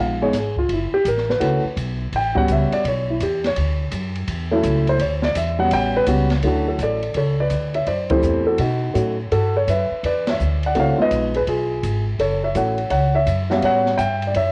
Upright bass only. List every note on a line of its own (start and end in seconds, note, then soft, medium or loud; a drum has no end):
0.00 0.32 A#1 medium
0.33 0.68 G#1 medium
0.69 0.91 F#1 medium
0.92 muted upright bass stroke soft
1.05 1.39 A1 medium
1.41 1.62 C#2 medium
1.64 muted upright bass stroke soft
1.77 2.11 B1 medium
2.12 2.47 A1 medium
2.48 2.70 C#2 medium
2.85 3.19 B1 medium
3.21 3.55 E2 medium
3.56 3.91 D2 medium
3.92 4.27 F#2 medium
4.28 4.62 E2 medium
4.63 4.98 C#2 loud
4.99 5.34 D2 medium
5.36 5.70 E2 medium
5.71 6.06 A1 medium
6.07 6.42 C#2 medium
6.43 6.78 D2 medium
6.79 7.14 A1 medium
7.15 7.50 C#2 medium
7.51 7.86 D2 medium
7.87 8.22 F#2 medium
8.22 8.58 E2 medium
8.59 8.94 B2 medium
8.95 9.30 A2 medium
9.31 9.66 G2 medium
9.67 9.89 F#2 medium
9.91 muted upright bass stroke soft
10.03 10.38 E2 medium
10.40 10.74 D2 medium
10.76 10.97 C#2 medium
10.99 muted upright bass stroke soft
11.11 11.46 A#1 medium
11.47 11.82 B1 medium
11.83 12.18 G#1 medium
12.19 12.53 F#1 medium
12.55 12.90 A1 medium
12.90 13.25 C#2 medium
13.26 13.61 F#2 medium
13.63 13.97 A2 medium
13.99 14.33 G2 medium
14.34 14.52 F#2 medium